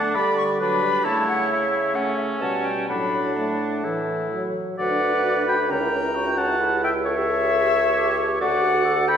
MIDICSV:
0, 0, Header, 1, 6, 480
1, 0, Start_track
1, 0, Key_signature, 2, "major"
1, 0, Tempo, 448430
1, 1124, Time_signature, 4, 2, 24, 8
1, 2086, Tempo, 472069
1, 5446, Tempo, 450789
1, 9618, End_track
2, 0, Start_track
2, 0, Title_t, "Flute"
2, 0, Program_c, 0, 73
2, 0, Note_on_c, 0, 81, 104
2, 156, Note_on_c, 0, 83, 113
2, 172, Note_off_c, 0, 81, 0
2, 397, Note_off_c, 0, 83, 0
2, 402, Note_on_c, 0, 85, 112
2, 466, Note_off_c, 0, 85, 0
2, 647, Note_on_c, 0, 83, 92
2, 1122, Note_on_c, 0, 81, 107
2, 1138, Note_off_c, 0, 83, 0
2, 1362, Note_off_c, 0, 81, 0
2, 1367, Note_on_c, 0, 78, 99
2, 1599, Note_off_c, 0, 78, 0
2, 1611, Note_on_c, 0, 76, 91
2, 2090, Note_on_c, 0, 78, 93
2, 2105, Note_off_c, 0, 76, 0
2, 2308, Note_off_c, 0, 78, 0
2, 2314, Note_on_c, 0, 76, 74
2, 2375, Note_off_c, 0, 76, 0
2, 2562, Note_on_c, 0, 78, 83
2, 2796, Note_on_c, 0, 79, 84
2, 2812, Note_off_c, 0, 78, 0
2, 3029, Note_off_c, 0, 79, 0
2, 3035, Note_on_c, 0, 83, 88
2, 3526, Note_on_c, 0, 81, 74
2, 3541, Note_off_c, 0, 83, 0
2, 4496, Note_off_c, 0, 81, 0
2, 4965, Note_on_c, 0, 78, 101
2, 5636, Note_off_c, 0, 78, 0
2, 5674, Note_on_c, 0, 83, 100
2, 5928, Note_on_c, 0, 82, 93
2, 5944, Note_off_c, 0, 83, 0
2, 6646, Note_on_c, 0, 81, 104
2, 6662, Note_off_c, 0, 82, 0
2, 7126, Note_off_c, 0, 81, 0
2, 7132, Note_on_c, 0, 79, 100
2, 7196, Note_off_c, 0, 79, 0
2, 7377, Note_on_c, 0, 76, 116
2, 8541, Note_off_c, 0, 76, 0
2, 8811, Note_on_c, 0, 78, 108
2, 9523, Note_on_c, 0, 83, 104
2, 9539, Note_off_c, 0, 78, 0
2, 9618, Note_off_c, 0, 83, 0
2, 9618, End_track
3, 0, Start_track
3, 0, Title_t, "Oboe"
3, 0, Program_c, 1, 68
3, 0, Note_on_c, 1, 62, 81
3, 347, Note_off_c, 1, 62, 0
3, 650, Note_on_c, 1, 62, 69
3, 1116, Note_on_c, 1, 64, 79
3, 1132, Note_off_c, 1, 62, 0
3, 2089, Note_on_c, 1, 61, 65
3, 2104, Note_off_c, 1, 64, 0
3, 3049, Note_off_c, 1, 61, 0
3, 3058, Note_on_c, 1, 62, 59
3, 4014, Note_on_c, 1, 64, 52
3, 4029, Note_off_c, 1, 62, 0
3, 4742, Note_off_c, 1, 64, 0
3, 4972, Note_on_c, 1, 74, 91
3, 5640, Note_off_c, 1, 74, 0
3, 5694, Note_on_c, 1, 79, 81
3, 5801, Note_off_c, 1, 79, 0
3, 5932, Note_on_c, 1, 79, 80
3, 6640, Note_on_c, 1, 78, 92
3, 6656, Note_off_c, 1, 79, 0
3, 7127, Note_off_c, 1, 78, 0
3, 7132, Note_on_c, 1, 76, 81
3, 7241, Note_off_c, 1, 76, 0
3, 7366, Note_on_c, 1, 73, 93
3, 8779, Note_off_c, 1, 73, 0
3, 8811, Note_on_c, 1, 74, 96
3, 9510, Note_off_c, 1, 74, 0
3, 9521, Note_on_c, 1, 79, 108
3, 9618, Note_off_c, 1, 79, 0
3, 9618, End_track
4, 0, Start_track
4, 0, Title_t, "Clarinet"
4, 0, Program_c, 2, 71
4, 0, Note_on_c, 2, 78, 88
4, 166, Note_on_c, 2, 74, 88
4, 182, Note_off_c, 2, 78, 0
4, 638, Note_off_c, 2, 74, 0
4, 644, Note_on_c, 2, 71, 79
4, 1116, Note_off_c, 2, 71, 0
4, 1124, Note_on_c, 2, 73, 86
4, 2066, Note_off_c, 2, 73, 0
4, 2084, Note_on_c, 2, 69, 68
4, 2550, Note_off_c, 2, 69, 0
4, 2562, Note_on_c, 2, 81, 77
4, 3039, Note_off_c, 2, 81, 0
4, 3047, Note_on_c, 2, 78, 64
4, 4709, Note_off_c, 2, 78, 0
4, 4981, Note_on_c, 2, 71, 95
4, 5930, Note_on_c, 2, 70, 76
4, 5946, Note_off_c, 2, 71, 0
4, 6400, Note_on_c, 2, 66, 88
4, 6416, Note_off_c, 2, 70, 0
4, 6886, Note_on_c, 2, 64, 73
4, 6901, Note_off_c, 2, 66, 0
4, 7358, Note_off_c, 2, 64, 0
4, 7364, Note_on_c, 2, 69, 85
4, 8310, Note_off_c, 2, 69, 0
4, 8328, Note_on_c, 2, 67, 87
4, 8799, Note_off_c, 2, 67, 0
4, 8804, Note_on_c, 2, 66, 89
4, 9276, Note_on_c, 2, 69, 100
4, 9292, Note_off_c, 2, 66, 0
4, 9618, Note_off_c, 2, 69, 0
4, 9618, End_track
5, 0, Start_track
5, 0, Title_t, "French horn"
5, 0, Program_c, 3, 60
5, 0, Note_on_c, 3, 57, 75
5, 165, Note_on_c, 3, 55, 78
5, 181, Note_off_c, 3, 57, 0
5, 651, Note_on_c, 3, 54, 79
5, 667, Note_off_c, 3, 55, 0
5, 887, Note_on_c, 3, 55, 80
5, 903, Note_off_c, 3, 54, 0
5, 1126, Note_off_c, 3, 55, 0
5, 1131, Note_on_c, 3, 57, 68
5, 1776, Note_off_c, 3, 57, 0
5, 2084, Note_on_c, 3, 57, 67
5, 2560, Note_on_c, 3, 55, 60
5, 2575, Note_off_c, 3, 57, 0
5, 3039, Note_off_c, 3, 55, 0
5, 3045, Note_on_c, 3, 54, 58
5, 3478, Note_off_c, 3, 54, 0
5, 3535, Note_on_c, 3, 57, 78
5, 4018, Note_on_c, 3, 52, 69
5, 4033, Note_off_c, 3, 57, 0
5, 4492, Note_off_c, 3, 52, 0
5, 4498, Note_on_c, 3, 54, 66
5, 4968, Note_off_c, 3, 54, 0
5, 4976, Note_on_c, 3, 66, 70
5, 5089, Note_on_c, 3, 62, 62
5, 5104, Note_off_c, 3, 66, 0
5, 5207, Note_on_c, 3, 66, 69
5, 5222, Note_off_c, 3, 62, 0
5, 5325, Note_on_c, 3, 62, 67
5, 5340, Note_off_c, 3, 66, 0
5, 5437, Note_off_c, 3, 62, 0
5, 5443, Note_on_c, 3, 66, 65
5, 5561, Note_on_c, 3, 62, 61
5, 5577, Note_off_c, 3, 66, 0
5, 5678, Note_on_c, 3, 66, 62
5, 5693, Note_off_c, 3, 62, 0
5, 5793, Note_on_c, 3, 62, 57
5, 5809, Note_off_c, 3, 66, 0
5, 5905, Note_off_c, 3, 62, 0
5, 5911, Note_on_c, 3, 61, 70
5, 6037, Note_on_c, 3, 64, 62
5, 6053, Note_off_c, 3, 61, 0
5, 6154, Note_on_c, 3, 61, 64
5, 6170, Note_off_c, 3, 64, 0
5, 6278, Note_on_c, 3, 64, 54
5, 6294, Note_off_c, 3, 61, 0
5, 6385, Note_off_c, 3, 64, 0
5, 6391, Note_on_c, 3, 61, 62
5, 6514, Note_on_c, 3, 64, 59
5, 6530, Note_off_c, 3, 61, 0
5, 6630, Note_on_c, 3, 61, 66
5, 6646, Note_off_c, 3, 64, 0
5, 6753, Note_on_c, 3, 64, 59
5, 6769, Note_off_c, 3, 61, 0
5, 6860, Note_off_c, 3, 64, 0
5, 6867, Note_on_c, 3, 69, 67
5, 6989, Note_on_c, 3, 67, 61
5, 7005, Note_off_c, 3, 69, 0
5, 7116, Note_on_c, 3, 69, 65
5, 7131, Note_off_c, 3, 67, 0
5, 7239, Note_on_c, 3, 67, 67
5, 7255, Note_off_c, 3, 69, 0
5, 7351, Note_off_c, 3, 67, 0
5, 7358, Note_on_c, 3, 69, 70
5, 7476, Note_on_c, 3, 67, 63
5, 7492, Note_off_c, 3, 69, 0
5, 7599, Note_on_c, 3, 69, 62
5, 7615, Note_off_c, 3, 67, 0
5, 7726, Note_on_c, 3, 67, 60
5, 7742, Note_off_c, 3, 69, 0
5, 7844, Note_off_c, 3, 67, 0
5, 7850, Note_on_c, 3, 69, 72
5, 7962, Note_on_c, 3, 67, 67
5, 7978, Note_off_c, 3, 69, 0
5, 8084, Note_on_c, 3, 69, 66
5, 8100, Note_off_c, 3, 67, 0
5, 8203, Note_on_c, 3, 67, 59
5, 8219, Note_off_c, 3, 69, 0
5, 8321, Note_off_c, 3, 67, 0
5, 8328, Note_on_c, 3, 69, 68
5, 8445, Note_on_c, 3, 67, 63
5, 8461, Note_off_c, 3, 69, 0
5, 8569, Note_on_c, 3, 69, 73
5, 8585, Note_off_c, 3, 67, 0
5, 8683, Note_on_c, 3, 67, 63
5, 8699, Note_off_c, 3, 69, 0
5, 8798, Note_off_c, 3, 67, 0
5, 8804, Note_on_c, 3, 69, 77
5, 8925, Note_on_c, 3, 66, 69
5, 8941, Note_off_c, 3, 69, 0
5, 9053, Note_on_c, 3, 69, 68
5, 9069, Note_off_c, 3, 66, 0
5, 9164, Note_on_c, 3, 66, 72
5, 9180, Note_off_c, 3, 69, 0
5, 9280, Note_off_c, 3, 66, 0
5, 9287, Note_on_c, 3, 69, 77
5, 9408, Note_on_c, 3, 66, 73
5, 9424, Note_off_c, 3, 69, 0
5, 9528, Note_on_c, 3, 69, 70
5, 9544, Note_off_c, 3, 66, 0
5, 9618, Note_off_c, 3, 69, 0
5, 9618, End_track
6, 0, Start_track
6, 0, Title_t, "Bassoon"
6, 0, Program_c, 4, 70
6, 0, Note_on_c, 4, 50, 77
6, 145, Note_off_c, 4, 50, 0
6, 171, Note_on_c, 4, 50, 79
6, 818, Note_off_c, 4, 50, 0
6, 1129, Note_on_c, 4, 49, 79
6, 2560, Note_on_c, 4, 47, 64
6, 2575, Note_off_c, 4, 49, 0
6, 3038, Note_off_c, 4, 47, 0
6, 3044, Note_on_c, 4, 45, 60
6, 3996, Note_off_c, 4, 45, 0
6, 4014, Note_on_c, 4, 45, 61
6, 4727, Note_off_c, 4, 45, 0
6, 4978, Note_on_c, 4, 38, 69
6, 5928, Note_on_c, 4, 37, 74
6, 5944, Note_off_c, 4, 38, 0
6, 8799, Note_off_c, 4, 37, 0
6, 8806, Note_on_c, 4, 38, 80
6, 9618, Note_off_c, 4, 38, 0
6, 9618, End_track
0, 0, End_of_file